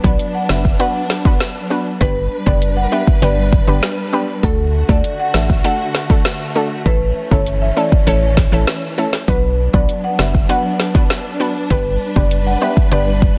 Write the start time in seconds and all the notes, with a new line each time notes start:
Already playing: F#3 B3 D4
0.04 B1 B3 D4 F#4 B4 D5, kick
0.19 closed hi-hat
0.35 F#5
0.49 F#1 B3 D4 F#4 B4 E5, snare
0.65 kick
0.79 B3 D4 F#4 B4 F#5, closed hi-hat
1.10 snare
1.25 B3 D4 F#4 B4, kick
1.40 snare, closed hi-hat
1.70 B3 D4 F#4 B4
2.01 G1 G3 B3 D4 G4 B4, kick, closed hi-hat
2.46 F#1 B3 D4 G4 B4 D5, kick
2.62 closed hi-hat
2.77 F#5
2.92 B3 D4 G4 B4 E5
3.07 kick
3.22 G1 B3 D4 G4 B4 D5, closed hi-hat
3.53 kick
3.67 G1 B3 D4 G4 B4
3.83 snare, closed hi-hat
4.13 B3 D4 G4 B4
4.43 D2 D3 A3 D4 F#4 A4, kick, closed hi-hat
4.89 D2 A3 D4 F#4 A4 D5, kick
5.04 closed hi-hat
5.20 F#5
5.34 A1 A3 D4 F#4 A4 E5, snare
5.50 kick
5.64 A3 D4 F#4 A4 F#5, closed hi-hat
5.95 snare
6.10 A3 D4 F#4 A4, kick
6.25 snare, closed hi-hat
6.55 A3 D4 F#4 A4
6.86 A1 E3 A3 C#4 E4 A4 B4, kick, closed hi-hat
7.31 G1 A3 C#4 E4 A4 C#5, kick
7.46 closed hi-hat
7.62 E5
7.77 A3 C#4 E4 A4 D5
7.92 kick
8.07 A1 A3 C#4 E4 A4 C#5, closed hi-hat
8.37 kick, snare
8.52 A1 A3 C#4 E4 A4
8.67 snare, closed hi-hat
8.98 A3 C#4 E4 A4
9.13 snare
9.28 B1 F#3 B3 D4 F#4 B4, kick, closed hi-hat
9.73 B1 B3 D4 F#4 B4 D5, kick
9.89 closed hi-hat
10.04 F#5
10.19 F#1 B3 D4 F#4 B4 E5, snare
10.35 kick
10.49 B3 D4 F#4 B4 F#5, closed hi-hat
10.80 snare
10.95 B3 D4 F#4 B4, kick
11.10 snare, closed hi-hat
11.40 B3 D4 F#4 B4
11.70 G1 G3 B3 D4 G4 B4, kick, closed hi-hat
12.16 F#1 B3 D4 G4 B4 D5, kick
12.31 closed hi-hat
12.47 F#5
12.61 B3 D4 G4 B4 E5
12.77 kick
12.92 G1 B3 D4 G4 B4 D5, closed hi-hat
13.22 kick